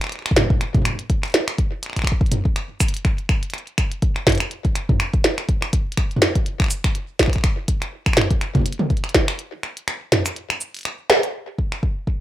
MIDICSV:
0, 0, Header, 1, 2, 480
1, 0, Start_track
1, 0, Tempo, 487805
1, 1560, Time_signature, 4, 2, 24, 8
1, 12009, End_track
2, 0, Start_track
2, 0, Title_t, "Drums"
2, 13, Note_on_c, 9, 26, 48
2, 13, Note_on_c, 9, 42, 55
2, 40, Note_off_c, 9, 26, 0
2, 40, Note_on_c, 9, 26, 39
2, 93, Note_off_c, 9, 26, 0
2, 93, Note_on_c, 9, 26, 26
2, 112, Note_off_c, 9, 42, 0
2, 119, Note_off_c, 9, 26, 0
2, 119, Note_on_c, 9, 26, 22
2, 119, Note_on_c, 9, 42, 55
2, 153, Note_off_c, 9, 26, 0
2, 153, Note_on_c, 9, 26, 18
2, 186, Note_off_c, 9, 26, 0
2, 186, Note_on_c, 9, 26, 15
2, 217, Note_off_c, 9, 42, 0
2, 220, Note_off_c, 9, 26, 0
2, 220, Note_on_c, 9, 26, 13
2, 253, Note_off_c, 9, 26, 0
2, 253, Note_on_c, 9, 26, 75
2, 253, Note_on_c, 9, 42, 28
2, 307, Note_on_c, 9, 36, 115
2, 352, Note_off_c, 9, 26, 0
2, 352, Note_off_c, 9, 42, 0
2, 359, Note_on_c, 9, 38, 127
2, 359, Note_on_c, 9, 42, 100
2, 359, Note_on_c, 9, 45, 92
2, 404, Note_off_c, 9, 45, 0
2, 404, Note_on_c, 9, 45, 72
2, 405, Note_off_c, 9, 36, 0
2, 439, Note_off_c, 9, 45, 0
2, 439, Note_on_c, 9, 45, 58
2, 457, Note_off_c, 9, 38, 0
2, 457, Note_off_c, 9, 42, 0
2, 494, Note_off_c, 9, 45, 0
2, 494, Note_on_c, 9, 36, 127
2, 494, Note_on_c, 9, 45, 47
2, 519, Note_off_c, 9, 45, 0
2, 519, Note_on_c, 9, 45, 39
2, 564, Note_off_c, 9, 45, 0
2, 564, Note_on_c, 9, 45, 32
2, 592, Note_off_c, 9, 36, 0
2, 599, Note_on_c, 9, 26, 52
2, 599, Note_on_c, 9, 42, 55
2, 663, Note_off_c, 9, 45, 0
2, 698, Note_off_c, 9, 26, 0
2, 698, Note_off_c, 9, 42, 0
2, 734, Note_on_c, 9, 36, 115
2, 734, Note_on_c, 9, 42, 28
2, 734, Note_on_c, 9, 45, 84
2, 759, Note_off_c, 9, 45, 0
2, 759, Note_on_c, 9, 45, 69
2, 804, Note_off_c, 9, 45, 0
2, 804, Note_on_c, 9, 45, 56
2, 832, Note_off_c, 9, 36, 0
2, 832, Note_off_c, 9, 42, 0
2, 839, Note_off_c, 9, 45, 0
2, 839, Note_on_c, 9, 26, 75
2, 839, Note_on_c, 9, 42, 93
2, 839, Note_on_c, 9, 45, 47
2, 884, Note_off_c, 9, 45, 0
2, 884, Note_on_c, 9, 45, 37
2, 920, Note_off_c, 9, 45, 0
2, 920, Note_on_c, 9, 45, 31
2, 938, Note_off_c, 9, 26, 0
2, 938, Note_off_c, 9, 42, 0
2, 974, Note_on_c, 9, 42, 54
2, 1018, Note_off_c, 9, 45, 0
2, 1072, Note_off_c, 9, 42, 0
2, 1079, Note_on_c, 9, 36, 113
2, 1079, Note_on_c, 9, 42, 56
2, 1178, Note_off_c, 9, 36, 0
2, 1178, Note_off_c, 9, 42, 0
2, 1214, Note_on_c, 9, 26, 52
2, 1214, Note_on_c, 9, 42, 26
2, 1235, Note_off_c, 9, 42, 0
2, 1235, Note_on_c, 9, 42, 22
2, 1256, Note_off_c, 9, 42, 0
2, 1256, Note_on_c, 9, 42, 17
2, 1277, Note_off_c, 9, 42, 0
2, 1277, Note_on_c, 9, 42, 15
2, 1298, Note_off_c, 9, 42, 0
2, 1298, Note_on_c, 9, 42, 12
2, 1312, Note_off_c, 9, 26, 0
2, 1319, Note_off_c, 9, 42, 0
2, 1319, Note_on_c, 9, 38, 122
2, 1319, Note_on_c, 9, 42, 93
2, 1418, Note_off_c, 9, 38, 0
2, 1418, Note_off_c, 9, 42, 0
2, 1453, Note_on_c, 9, 26, 78
2, 1453, Note_on_c, 9, 42, 56
2, 1552, Note_off_c, 9, 26, 0
2, 1552, Note_off_c, 9, 42, 0
2, 1559, Note_on_c, 9, 36, 109
2, 1559, Note_on_c, 9, 42, 52
2, 1658, Note_off_c, 9, 36, 0
2, 1658, Note_off_c, 9, 42, 0
2, 1799, Note_on_c, 9, 26, 24
2, 1799, Note_on_c, 9, 42, 93
2, 1833, Note_off_c, 9, 26, 0
2, 1833, Note_on_c, 9, 26, 26
2, 1866, Note_off_c, 9, 26, 0
2, 1866, Note_on_c, 9, 26, 30
2, 1898, Note_off_c, 9, 42, 0
2, 1900, Note_off_c, 9, 26, 0
2, 1900, Note_on_c, 9, 26, 31
2, 1933, Note_off_c, 9, 26, 0
2, 1933, Note_on_c, 9, 26, 34
2, 1933, Note_on_c, 9, 42, 52
2, 1934, Note_on_c, 9, 36, 50
2, 1960, Note_off_c, 9, 26, 0
2, 1960, Note_on_c, 9, 26, 37
2, 1986, Note_off_c, 9, 26, 0
2, 1986, Note_on_c, 9, 26, 41
2, 2004, Note_off_c, 9, 36, 0
2, 2004, Note_on_c, 9, 36, 68
2, 2013, Note_off_c, 9, 26, 0
2, 2013, Note_on_c, 9, 26, 45
2, 2032, Note_off_c, 9, 42, 0
2, 2039, Note_off_c, 9, 26, 0
2, 2039, Note_on_c, 9, 26, 77
2, 2039, Note_on_c, 9, 42, 54
2, 2084, Note_off_c, 9, 36, 0
2, 2084, Note_on_c, 9, 36, 85
2, 2137, Note_off_c, 9, 26, 0
2, 2137, Note_off_c, 9, 42, 0
2, 2174, Note_off_c, 9, 36, 0
2, 2174, Note_on_c, 9, 36, 127
2, 2226, Note_on_c, 9, 42, 28
2, 2272, Note_off_c, 9, 36, 0
2, 2279, Note_off_c, 9, 42, 0
2, 2279, Note_on_c, 9, 42, 97
2, 2279, Note_on_c, 9, 45, 98
2, 2377, Note_off_c, 9, 42, 0
2, 2377, Note_off_c, 9, 45, 0
2, 2414, Note_on_c, 9, 36, 112
2, 2512, Note_off_c, 9, 36, 0
2, 2519, Note_on_c, 9, 26, 48
2, 2519, Note_on_c, 9, 42, 51
2, 2618, Note_off_c, 9, 26, 0
2, 2618, Note_off_c, 9, 42, 0
2, 2759, Note_on_c, 9, 26, 72
2, 2759, Note_on_c, 9, 36, 112
2, 2759, Note_on_c, 9, 42, 82
2, 2759, Note_on_c, 9, 69, 63
2, 2839, Note_off_c, 9, 42, 0
2, 2839, Note_on_c, 9, 42, 70
2, 2857, Note_off_c, 9, 26, 0
2, 2857, Note_off_c, 9, 69, 0
2, 2858, Note_off_c, 9, 36, 0
2, 2893, Note_off_c, 9, 42, 0
2, 2893, Note_on_c, 9, 42, 54
2, 2918, Note_off_c, 9, 42, 0
2, 2918, Note_on_c, 9, 42, 58
2, 2998, Note_off_c, 9, 42, 0
2, 2998, Note_on_c, 9, 26, 51
2, 2998, Note_on_c, 9, 42, 53
2, 2999, Note_on_c, 9, 36, 125
2, 3097, Note_off_c, 9, 26, 0
2, 3097, Note_off_c, 9, 42, 0
2, 3098, Note_off_c, 9, 36, 0
2, 3133, Note_on_c, 9, 42, 26
2, 3232, Note_off_c, 9, 42, 0
2, 3238, Note_on_c, 9, 26, 74
2, 3239, Note_on_c, 9, 36, 112
2, 3337, Note_off_c, 9, 26, 0
2, 3338, Note_off_c, 9, 36, 0
2, 3373, Note_on_c, 9, 42, 51
2, 3444, Note_off_c, 9, 42, 0
2, 3444, Note_on_c, 9, 42, 41
2, 3479, Note_off_c, 9, 42, 0
2, 3479, Note_on_c, 9, 26, 50
2, 3479, Note_on_c, 9, 42, 50
2, 3523, Note_off_c, 9, 42, 0
2, 3523, Note_on_c, 9, 42, 34
2, 3577, Note_off_c, 9, 26, 0
2, 3613, Note_off_c, 9, 42, 0
2, 3613, Note_on_c, 9, 42, 26
2, 3712, Note_off_c, 9, 42, 0
2, 3719, Note_on_c, 9, 26, 78
2, 3719, Note_on_c, 9, 36, 102
2, 3719, Note_on_c, 9, 42, 93
2, 3817, Note_off_c, 9, 26, 0
2, 3817, Note_off_c, 9, 42, 0
2, 3818, Note_off_c, 9, 36, 0
2, 3853, Note_on_c, 9, 42, 51
2, 3952, Note_off_c, 9, 42, 0
2, 3959, Note_on_c, 9, 36, 118
2, 3959, Note_on_c, 9, 42, 52
2, 4057, Note_off_c, 9, 42, 0
2, 4058, Note_off_c, 9, 36, 0
2, 4093, Note_on_c, 9, 26, 50
2, 4093, Note_on_c, 9, 42, 25
2, 4191, Note_off_c, 9, 26, 0
2, 4191, Note_off_c, 9, 42, 0
2, 4199, Note_on_c, 9, 36, 104
2, 4199, Note_on_c, 9, 38, 126
2, 4199, Note_on_c, 9, 42, 89
2, 4199, Note_on_c, 9, 45, 99
2, 4226, Note_off_c, 9, 42, 0
2, 4226, Note_on_c, 9, 42, 70
2, 4253, Note_off_c, 9, 42, 0
2, 4253, Note_on_c, 9, 42, 61
2, 4280, Note_off_c, 9, 42, 0
2, 4280, Note_on_c, 9, 42, 49
2, 4297, Note_off_c, 9, 38, 0
2, 4297, Note_off_c, 9, 45, 0
2, 4298, Note_off_c, 9, 36, 0
2, 4306, Note_off_c, 9, 42, 0
2, 4306, Note_on_c, 9, 42, 41
2, 4333, Note_off_c, 9, 42, 0
2, 4333, Note_on_c, 9, 26, 76
2, 4333, Note_on_c, 9, 42, 51
2, 4432, Note_off_c, 9, 26, 0
2, 4432, Note_off_c, 9, 42, 0
2, 4439, Note_on_c, 9, 42, 50
2, 4537, Note_off_c, 9, 42, 0
2, 4573, Note_on_c, 9, 42, 26
2, 4574, Note_on_c, 9, 36, 107
2, 4671, Note_off_c, 9, 42, 0
2, 4672, Note_off_c, 9, 36, 0
2, 4679, Note_on_c, 9, 26, 50
2, 4679, Note_on_c, 9, 42, 86
2, 4777, Note_off_c, 9, 26, 0
2, 4777, Note_off_c, 9, 42, 0
2, 4813, Note_on_c, 9, 45, 93
2, 4814, Note_on_c, 9, 36, 118
2, 4912, Note_off_c, 9, 36, 0
2, 4912, Note_off_c, 9, 45, 0
2, 4919, Note_on_c, 9, 26, 80
2, 4919, Note_on_c, 9, 42, 53
2, 5017, Note_off_c, 9, 26, 0
2, 5017, Note_off_c, 9, 42, 0
2, 5053, Note_on_c, 9, 42, 26
2, 5054, Note_on_c, 9, 36, 111
2, 5152, Note_off_c, 9, 36, 0
2, 5152, Note_off_c, 9, 42, 0
2, 5159, Note_on_c, 9, 38, 119
2, 5159, Note_on_c, 9, 42, 85
2, 5257, Note_off_c, 9, 38, 0
2, 5257, Note_off_c, 9, 42, 0
2, 5293, Note_on_c, 9, 26, 51
2, 5293, Note_on_c, 9, 42, 52
2, 5392, Note_off_c, 9, 26, 0
2, 5392, Note_off_c, 9, 42, 0
2, 5399, Note_on_c, 9, 36, 105
2, 5399, Note_on_c, 9, 42, 50
2, 5497, Note_off_c, 9, 42, 0
2, 5498, Note_off_c, 9, 36, 0
2, 5533, Note_on_c, 9, 26, 80
2, 5632, Note_off_c, 9, 26, 0
2, 5639, Note_on_c, 9, 36, 112
2, 5639, Note_on_c, 9, 42, 91
2, 5737, Note_off_c, 9, 42, 0
2, 5738, Note_off_c, 9, 36, 0
2, 5826, Note_on_c, 9, 42, 52
2, 5879, Note_off_c, 9, 42, 0
2, 5879, Note_on_c, 9, 26, 52
2, 5879, Note_on_c, 9, 36, 102
2, 5879, Note_on_c, 9, 42, 52
2, 5977, Note_off_c, 9, 26, 0
2, 5977, Note_off_c, 9, 42, 0
2, 5978, Note_off_c, 9, 36, 0
2, 6013, Note_on_c, 9, 42, 26
2, 6066, Note_on_c, 9, 45, 98
2, 6112, Note_off_c, 9, 42, 0
2, 6119, Note_on_c, 9, 26, 81
2, 6119, Note_on_c, 9, 38, 120
2, 6119, Note_on_c, 9, 42, 96
2, 6164, Note_off_c, 9, 45, 0
2, 6217, Note_off_c, 9, 26, 0
2, 6217, Note_off_c, 9, 38, 0
2, 6217, Note_off_c, 9, 42, 0
2, 6253, Note_on_c, 9, 42, 50
2, 6254, Note_on_c, 9, 36, 108
2, 6351, Note_off_c, 9, 42, 0
2, 6352, Note_off_c, 9, 36, 0
2, 6358, Note_on_c, 9, 42, 52
2, 6457, Note_off_c, 9, 42, 0
2, 6493, Note_on_c, 9, 26, 52
2, 6493, Note_on_c, 9, 36, 117
2, 6493, Note_on_c, 9, 42, 26
2, 6514, Note_off_c, 9, 26, 0
2, 6514, Note_on_c, 9, 26, 41
2, 6535, Note_off_c, 9, 26, 0
2, 6535, Note_on_c, 9, 26, 34
2, 6556, Note_off_c, 9, 26, 0
2, 6556, Note_on_c, 9, 26, 28
2, 6578, Note_off_c, 9, 26, 0
2, 6578, Note_on_c, 9, 26, 23
2, 6591, Note_off_c, 9, 42, 0
2, 6592, Note_off_c, 9, 36, 0
2, 6599, Note_on_c, 9, 42, 87
2, 6599, Note_on_c, 9, 69, 65
2, 6676, Note_off_c, 9, 26, 0
2, 6697, Note_off_c, 9, 42, 0
2, 6697, Note_off_c, 9, 69, 0
2, 6733, Note_on_c, 9, 26, 78
2, 6733, Note_on_c, 9, 42, 50
2, 6734, Note_on_c, 9, 36, 99
2, 6832, Note_off_c, 9, 26, 0
2, 6832, Note_off_c, 9, 36, 0
2, 6832, Note_off_c, 9, 42, 0
2, 6839, Note_on_c, 9, 42, 52
2, 6937, Note_off_c, 9, 42, 0
2, 7079, Note_on_c, 9, 26, 50
2, 7079, Note_on_c, 9, 36, 101
2, 7079, Note_on_c, 9, 38, 112
2, 7079, Note_on_c, 9, 42, 91
2, 7113, Note_off_c, 9, 26, 0
2, 7113, Note_on_c, 9, 26, 41
2, 7146, Note_off_c, 9, 26, 0
2, 7146, Note_on_c, 9, 26, 33
2, 7159, Note_off_c, 9, 36, 0
2, 7159, Note_on_c, 9, 36, 80
2, 7177, Note_off_c, 9, 38, 0
2, 7177, Note_off_c, 9, 42, 0
2, 7179, Note_off_c, 9, 26, 0
2, 7179, Note_on_c, 9, 26, 28
2, 7213, Note_off_c, 9, 26, 0
2, 7213, Note_on_c, 9, 26, 24
2, 7213, Note_on_c, 9, 42, 49
2, 7239, Note_off_c, 9, 26, 0
2, 7239, Note_off_c, 9, 36, 0
2, 7239, Note_on_c, 9, 26, 18
2, 7239, Note_on_c, 9, 36, 65
2, 7265, Note_off_c, 9, 26, 0
2, 7265, Note_on_c, 9, 26, 15
2, 7292, Note_off_c, 9, 26, 0
2, 7292, Note_on_c, 9, 26, 13
2, 7311, Note_off_c, 9, 42, 0
2, 7318, Note_off_c, 9, 26, 0
2, 7318, Note_on_c, 9, 26, 79
2, 7318, Note_on_c, 9, 42, 52
2, 7319, Note_off_c, 9, 36, 0
2, 7319, Note_on_c, 9, 36, 113
2, 7417, Note_off_c, 9, 26, 0
2, 7417, Note_off_c, 9, 36, 0
2, 7417, Note_off_c, 9, 42, 0
2, 7558, Note_on_c, 9, 42, 91
2, 7559, Note_on_c, 9, 36, 97
2, 7657, Note_off_c, 9, 36, 0
2, 7657, Note_off_c, 9, 42, 0
2, 7693, Note_on_c, 9, 26, 55
2, 7693, Note_on_c, 9, 42, 52
2, 7791, Note_off_c, 9, 26, 0
2, 7791, Note_off_c, 9, 42, 0
2, 7933, Note_on_c, 9, 26, 78
2, 7933, Note_on_c, 9, 36, 104
2, 7933, Note_on_c, 9, 42, 26
2, 8003, Note_off_c, 9, 26, 0
2, 8003, Note_on_c, 9, 26, 64
2, 8031, Note_off_c, 9, 42, 0
2, 8032, Note_off_c, 9, 36, 0
2, 8038, Note_on_c, 9, 38, 123
2, 8038, Note_on_c, 9, 42, 97
2, 8038, Note_on_c, 9, 45, 104
2, 8083, Note_off_c, 9, 26, 0
2, 8083, Note_on_c, 9, 26, 55
2, 8136, Note_off_c, 9, 38, 0
2, 8136, Note_off_c, 9, 42, 0
2, 8136, Note_off_c, 9, 45, 0
2, 8173, Note_on_c, 9, 42, 51
2, 8174, Note_on_c, 9, 36, 113
2, 8182, Note_off_c, 9, 26, 0
2, 8271, Note_off_c, 9, 42, 0
2, 8272, Note_off_c, 9, 36, 0
2, 8278, Note_on_c, 9, 26, 54
2, 8278, Note_on_c, 9, 42, 52
2, 8377, Note_off_c, 9, 26, 0
2, 8377, Note_off_c, 9, 42, 0
2, 8413, Note_on_c, 9, 42, 26
2, 8413, Note_on_c, 9, 45, 95
2, 8414, Note_on_c, 9, 36, 104
2, 8434, Note_off_c, 9, 45, 0
2, 8434, Note_on_c, 9, 45, 77
2, 8455, Note_off_c, 9, 45, 0
2, 8455, Note_on_c, 9, 45, 64
2, 8476, Note_off_c, 9, 45, 0
2, 8476, Note_on_c, 9, 45, 53
2, 8498, Note_off_c, 9, 45, 0
2, 8498, Note_on_c, 9, 45, 42
2, 8511, Note_off_c, 9, 42, 0
2, 8512, Note_off_c, 9, 36, 0
2, 8519, Note_on_c, 9, 42, 90
2, 8586, Note_off_c, 9, 42, 0
2, 8586, Note_on_c, 9, 42, 51
2, 8596, Note_off_c, 9, 45, 0
2, 8653, Note_on_c, 9, 45, 99
2, 8684, Note_off_c, 9, 42, 0
2, 8751, Note_off_c, 9, 45, 0
2, 8759, Note_on_c, 9, 36, 102
2, 8759, Note_on_c, 9, 42, 23
2, 8826, Note_off_c, 9, 42, 0
2, 8826, Note_on_c, 9, 42, 30
2, 8858, Note_off_c, 9, 36, 0
2, 8893, Note_off_c, 9, 42, 0
2, 8893, Note_on_c, 9, 26, 54
2, 8893, Note_on_c, 9, 42, 37
2, 8946, Note_off_c, 9, 42, 0
2, 8946, Note_on_c, 9, 42, 42
2, 8992, Note_off_c, 9, 26, 0
2, 8999, Note_off_c, 9, 42, 0
2, 8999, Note_on_c, 9, 36, 114
2, 8999, Note_on_c, 9, 38, 116
2, 8999, Note_on_c, 9, 42, 90
2, 9097, Note_off_c, 9, 38, 0
2, 9097, Note_off_c, 9, 42, 0
2, 9098, Note_off_c, 9, 36, 0
2, 9133, Note_on_c, 9, 26, 82
2, 9231, Note_off_c, 9, 26, 0
2, 9239, Note_on_c, 9, 42, 52
2, 9337, Note_off_c, 9, 42, 0
2, 9479, Note_on_c, 9, 26, 56
2, 9479, Note_on_c, 9, 42, 27
2, 9578, Note_off_c, 9, 26, 0
2, 9578, Note_off_c, 9, 42, 0
2, 9613, Note_on_c, 9, 42, 56
2, 9712, Note_off_c, 9, 42, 0
2, 9719, Note_on_c, 9, 26, 87
2, 9719, Note_on_c, 9, 42, 54
2, 9817, Note_off_c, 9, 26, 0
2, 9817, Note_off_c, 9, 42, 0
2, 9959, Note_on_c, 9, 38, 120
2, 9959, Note_on_c, 9, 42, 103
2, 9959, Note_on_c, 9, 45, 102
2, 10057, Note_off_c, 9, 38, 0
2, 10057, Note_off_c, 9, 42, 0
2, 10057, Note_off_c, 9, 45, 0
2, 10093, Note_on_c, 9, 26, 57
2, 10093, Note_on_c, 9, 42, 53
2, 10093, Note_on_c, 9, 69, 64
2, 10191, Note_off_c, 9, 26, 0
2, 10191, Note_off_c, 9, 42, 0
2, 10191, Note_off_c, 9, 69, 0
2, 10198, Note_on_c, 9, 42, 53
2, 10297, Note_off_c, 9, 42, 0
2, 10333, Note_on_c, 9, 26, 86
2, 10333, Note_on_c, 9, 42, 27
2, 10431, Note_off_c, 9, 26, 0
2, 10431, Note_off_c, 9, 42, 0
2, 10439, Note_on_c, 9, 69, 60
2, 10537, Note_off_c, 9, 69, 0
2, 10573, Note_on_c, 9, 42, 50
2, 10594, Note_off_c, 9, 42, 0
2, 10594, Note_on_c, 9, 42, 42
2, 10615, Note_off_c, 9, 42, 0
2, 10615, Note_on_c, 9, 42, 34
2, 10637, Note_off_c, 9, 42, 0
2, 10637, Note_on_c, 9, 42, 29
2, 10658, Note_off_c, 9, 42, 0
2, 10658, Note_on_c, 9, 42, 23
2, 10679, Note_off_c, 9, 42, 0
2, 10679, Note_on_c, 9, 26, 58
2, 10679, Note_on_c, 9, 42, 57
2, 10778, Note_off_c, 9, 26, 0
2, 10778, Note_off_c, 9, 42, 0
2, 10919, Note_on_c, 9, 38, 117
2, 10919, Note_on_c, 9, 42, 93
2, 11017, Note_off_c, 9, 38, 0
2, 11017, Note_off_c, 9, 42, 0
2, 11054, Note_on_c, 9, 42, 54
2, 11152, Note_off_c, 9, 42, 0
2, 11399, Note_on_c, 9, 36, 94
2, 11498, Note_off_c, 9, 36, 0
2, 11534, Note_on_c, 9, 26, 49
2, 11632, Note_off_c, 9, 26, 0
2, 11639, Note_on_c, 9, 36, 107
2, 11738, Note_off_c, 9, 36, 0
2, 11879, Note_on_c, 9, 36, 94
2, 11978, Note_off_c, 9, 36, 0
2, 12009, End_track
0, 0, End_of_file